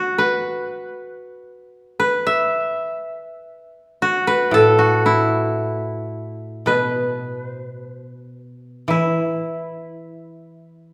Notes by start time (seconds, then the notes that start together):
Already playing: F#4
0.18 B4
2.00 B4
2.27 E5
4.02 F#4
4.27 B4
4.51 A2 A4
4.79 F#4
5.06 E4
6.66 B2 B4
7.45 C5
7.66 B4
7.88 C5
8.09 B4
8.88 E3 E4